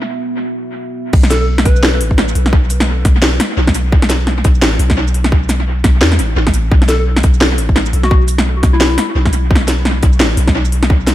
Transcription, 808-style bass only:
1.13 1.65 B1 loud
1.65 2.02 B1 medium
2.00 2.34 A1 medium
2.35 3.04 B1 medium
3.05 3.39 B1 medium
3.57 4.44 B1 medium
4.45 4.64 B1 medium
4.62 4.78 A1 loud
4.79 5.83 B1 loud
5.84 6.03 B1 medium
6.01 6.20 E2 loud
6.19 6.35 A1 medium
6.36 6.70 A1 loud
6.71 7.23 B1 loud
7.24 7.60 B1 medium
7.58 7.92 A1 medium
7.93 8.62 B1 medium
8.63 8.97 B1 medium
9.15 10.02 B1 medium
10.03 10.22 B1 medium
10.20 10.36 A1 loud
10.37 11.15 B1 loud

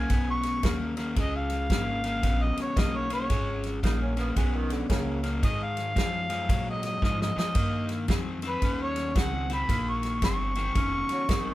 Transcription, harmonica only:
0.00 0.28 G#5 medium
0.31 0.81 C#6 medium
1.20 1.36 D#5 medium
1.36 2.44 F5 loud
2.43 2.59 D#5 medium
2.62 2.80 C#5 medium
2.79 2.98 D#5 medium
2.96 3.12 C#5 medium
3.14 3.64 C#5 medium
5.44 5.64 D#5 medium
5.63 6.65 F5 loud
6.70 6.85 D#5 medium
6.85 7.02 D#5 medium
7.05 7.21 D#5 medium
7.21 7.38 D#5 medium
7.39 7.90 D#5 medium
8.47 8.80 B4 medium
8.82 9.19 C#5 medium
9.18 9.51 F#5 medium
9.53 9.91 B5 medium
9.89 10.22 C#6 medium
10.24 11.54 C#6 loud

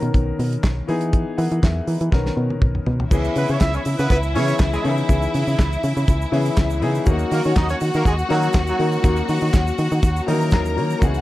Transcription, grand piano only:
0.00 0.91 D#3 loud
0.00 0.88 B3 medium
0.00 0.91 C#4 medium
0.00 0.90 A#4 loud
0.87 1.33 E3 medium
0.87 1.33 B3 medium
0.87 1.33 D#4 medium
0.87 1.34 G#4 loud
1.38 1.62 A#4 medium
1.38 1.61 F#5 medium
1.63 1.87 G#4 medium
1.63 1.86 E5 medium
1.87 2.35 D#4 medium
1.87 2.34 B4 medium
2.12 3.01 D#3 medium
2.12 3.01 B3 medium
2.12 3.02 C#4 medium
2.12 3.02 A#4 medium
3.11 4.00 E3 medium
3.11 4.01 B3 medium
3.11 4.01 C#4 medium
3.11 4.01 E4 medium
3.11 4.01 G#4 medium
4.35 4.80 E3 medium
4.35 4.80 B3 medium
4.35 4.80 C#4 medium
4.35 4.80 E4 medium
4.35 4.80 G#4 medium
4.84 5.06 E3 medium
4.84 5.07 B3 medium
4.84 5.07 C#4 medium
4.84 5.07 D#4 medium
4.84 5.07 G#4 medium
5.09 5.98 E3 medium
5.09 5.98 B3 medium
5.09 5.98 C#4 medium
5.09 5.98 E4 medium
5.09 5.98 G#4 medium
6.31 6.77 E3 medium
6.31 6.77 B3 medium
6.31 6.77 C#4 medium
6.31 6.77 E4 medium
6.31 6.78 G#4 medium
6.81 7.04 E3 medium
6.81 7.04 B3 medium
6.81 7.04 C#4 medium
6.81 7.04 D#4 medium
6.81 7.05 G#4 loud
7.05 7.95 F#3 medium
7.05 7.95 A#3 medium
7.05 7.95 C#4 medium
7.05 7.96 D#4 medium
7.05 7.96 A#4 loud
8.29 8.74 F#3 medium
8.29 8.74 A#3 medium
8.29 8.74 C#4 medium
8.29 8.74 D#4 medium
8.29 8.75 A#4 loud
8.79 9.01 F#3 medium
8.79 9.01 A#3 medium
8.79 9.01 C#4 medium
8.79 9.02 D#4 medium
8.79 9.02 A#4 medium
9.02 9.92 F#3 medium
9.02 9.92 A#3 medium
9.02 9.92 C#4 medium
9.02 9.93 D#4 medium
9.02 9.93 A#4 medium
10.27 10.33 E3 medium
10.27 10.72 A#3 medium
10.27 10.72 C#4 medium
10.27 10.72 D#4 medium
10.27 10.72 A#4 medium
10.32 10.74 F#3 medium
10.76 10.99 F#3 medium
10.76 10.99 A#3 medium
10.76 10.99 C#4 medium
10.76 10.99 D#4 medium
10.76 10.99 A#4 medium
11.01 11.21 E3 medium
11.01 11.21 B3 medium
11.01 11.21 C#4 medium
11.01 11.21 D#4 medium
11.01 11.21 G#4 medium

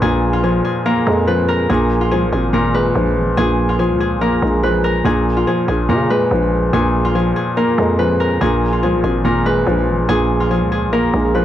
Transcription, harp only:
0.00 0.33 F4 medium
0.00 0.43 G#4 loud
0.00 0.92 B4 medium
0.33 2.00 F4 medium
0.44 0.64 G#4 medium
0.65 1.69 G#4 medium
0.86 1.33 A#4 medium
1.27 1.54 B4 medium
1.48 2.53 A#4 loud
1.70 2.11 G#4 loud
2.01 3.68 F4 medium
2.11 2.32 G#4 medium
2.32 3.37 G#4 medium
2.54 2.80 A#4 loud
2.74 4.27 B4 medium
3.37 3.79 G#4 loud
3.69 5.36 F4 medium
3.79 4.00 G#4 medium
4.00 5.05 G#4 medium
4.21 4.69 A#4 medium
4.63 4.90 B4 medium
4.84 5.89 A#4 medium
5.05 5.47 G#4 loud
5.37 7.04 F4 medium
5.47 5.68 G#4 medium
5.68 6.73 G#4 medium
5.89 6.16 A#4 medium
6.10 7.63 B4 medium
6.73 7.15 G#4 loud
7.05 8.72 F4 medium
7.15 7.36 G#4 medium
7.36 8.41 G#4 medium
7.57 8.05 A#4 medium
7.99 8.26 B4 medium
8.20 9.24 A#4 medium
8.41 8.82 G#4 loud
8.72 10.40 F4 medium
8.83 9.03 G#4 medium
9.04 10.08 G#4 medium
9.25 9.52 A#4 loud
9.46 10.99 B4 medium
10.09 10.50 G#4 loud
10.40 11.45 F4 medium
10.51 10.71 G#4 medium
10.72 11.45 G#4 medium
10.93 11.41 A#4 loud
11.35 11.45 B4 medium

